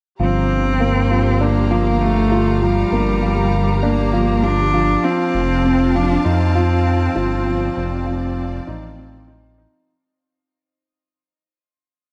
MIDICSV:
0, 0, Header, 1, 5, 480
1, 0, Start_track
1, 0, Key_signature, -2, "minor"
1, 0, Tempo, 606061
1, 154, Time_signature, 4, 2, 24, 8
1, 9600, End_track
2, 0, Start_track
2, 0, Title_t, "String section"
2, 0, Program_c, 0, 48
2, 158, Note_on_c, 0, 82, 92
2, 160, Note_on_c, 0, 67, 84
2, 160, Note_on_c, 0, 77, 76
2, 3965, Note_off_c, 0, 82, 0
2, 3966, Note_off_c, 0, 67, 0
2, 3966, Note_off_c, 0, 77, 0
2, 3995, Note_on_c, 0, 81, 97
2, 3996, Note_on_c, 0, 77, 76
2, 3997, Note_on_c, 0, 65, 85
2, 5896, Note_off_c, 0, 77, 0
2, 5914, Note_on_c, 0, 74, 79
2, 7803, Note_off_c, 0, 81, 0
2, 7804, Note_off_c, 0, 65, 0
2, 7815, Note_off_c, 0, 74, 0
2, 9600, End_track
3, 0, Start_track
3, 0, Title_t, "Cello"
3, 0, Program_c, 1, 42
3, 165, Note_on_c, 1, 60, 107
3, 1121, Note_on_c, 1, 58, 102
3, 1133, Note_off_c, 1, 60, 0
3, 1595, Note_on_c, 1, 57, 106
3, 1607, Note_off_c, 1, 58, 0
3, 2078, Note_on_c, 1, 55, 104
3, 2090, Note_off_c, 1, 57, 0
3, 3032, Note_off_c, 1, 55, 0
3, 3036, Note_on_c, 1, 58, 98
3, 3514, Note_on_c, 1, 62, 114
3, 3526, Note_off_c, 1, 58, 0
3, 3995, Note_on_c, 1, 60, 105
3, 4006, Note_off_c, 1, 62, 0
3, 4716, Note_on_c, 1, 62, 100
3, 4728, Note_off_c, 1, 60, 0
3, 4954, Note_on_c, 1, 60, 98
3, 4966, Note_off_c, 1, 62, 0
3, 7354, Note_off_c, 1, 60, 0
3, 9600, End_track
4, 0, Start_track
4, 0, Title_t, "Felt piano"
4, 0, Program_c, 2, 0
4, 156, Note_on_c, 2, 53, 75
4, 282, Control_c, 2, 64, 127
4, 383, Note_off_c, 2, 53, 0
4, 634, Note_on_c, 2, 58, 77
4, 771, Note_off_c, 2, 58, 0
4, 876, Note_on_c, 2, 53, 72
4, 1012, Note_off_c, 2, 53, 0
4, 1114, Note_on_c, 2, 62, 82
4, 1251, Note_off_c, 2, 62, 0
4, 1352, Note_on_c, 2, 53, 101
4, 1581, Note_off_c, 2, 53, 0
4, 1835, Note_on_c, 2, 65, 95
4, 2063, Note_off_c, 2, 65, 0
4, 2076, Note_on_c, 2, 53, 84
4, 2303, Note_off_c, 2, 53, 0
4, 2315, Note_on_c, 2, 58, 95
4, 2543, Note_off_c, 2, 58, 0
4, 2551, Note_on_c, 2, 53, 73
4, 2690, Note_off_c, 2, 53, 0
4, 3032, Note_on_c, 2, 62, 81
4, 3261, Note_off_c, 2, 62, 0
4, 3270, Note_on_c, 2, 53, 101
4, 3500, Note_off_c, 2, 53, 0
4, 3513, Note_on_c, 2, 65, 79
4, 3742, Note_off_c, 2, 65, 0
4, 3751, Note_on_c, 2, 53, 103
4, 3980, Note_off_c, 2, 53, 0
4, 3991, Note_on_c, 2, 53, 84
4, 4005, Control_c, 2, 64, 0
4, 4145, Control_c, 2, 64, 127
4, 4221, Note_off_c, 2, 53, 0
4, 4472, Note_on_c, 2, 60, 78
4, 4610, Note_off_c, 2, 60, 0
4, 4710, Note_on_c, 2, 53, 78
4, 4849, Note_off_c, 2, 53, 0
4, 4946, Note_on_c, 2, 63, 84
4, 5087, Note_off_c, 2, 63, 0
4, 5191, Note_on_c, 2, 53, 103
4, 5421, Note_off_c, 2, 53, 0
4, 5667, Note_on_c, 2, 65, 108
4, 5899, Note_off_c, 2, 65, 0
4, 5908, Note_on_c, 2, 53, 85
4, 6140, Note_off_c, 2, 53, 0
4, 6147, Note_on_c, 2, 60, 95
4, 6379, Note_off_c, 2, 60, 0
4, 6385, Note_on_c, 2, 53, 77
4, 6527, Note_off_c, 2, 53, 0
4, 6868, Note_on_c, 2, 63, 84
4, 7099, Note_off_c, 2, 63, 0
4, 7108, Note_on_c, 2, 60, 81
4, 7339, Note_off_c, 2, 60, 0
4, 7347, Note_on_c, 2, 63, 77
4, 7577, Note_off_c, 2, 63, 0
4, 7589, Note_on_c, 2, 63, 79
4, 7820, Note_off_c, 2, 63, 0
4, 7844, Control_c, 2, 64, 0
4, 9600, End_track
5, 0, Start_track
5, 0, Title_t, "Detuned saw bass"
5, 0, Program_c, 3, 39
5, 155, Note_on_c, 3, 31, 96
5, 2254, Note_off_c, 3, 31, 0
5, 2311, Note_on_c, 3, 31, 77
5, 3932, Note_off_c, 3, 31, 0
5, 4232, Note_on_c, 3, 29, 78
5, 4892, Note_off_c, 3, 29, 0
5, 4951, Note_on_c, 3, 41, 83
5, 5612, Note_off_c, 3, 41, 0
5, 5670, Note_on_c, 3, 31, 96
5, 6092, Note_off_c, 3, 31, 0
5, 6154, Note_on_c, 3, 29, 86
5, 6813, Note_off_c, 3, 29, 0
5, 6874, Note_on_c, 3, 33, 86
5, 7654, Note_off_c, 3, 33, 0
5, 9600, End_track
0, 0, End_of_file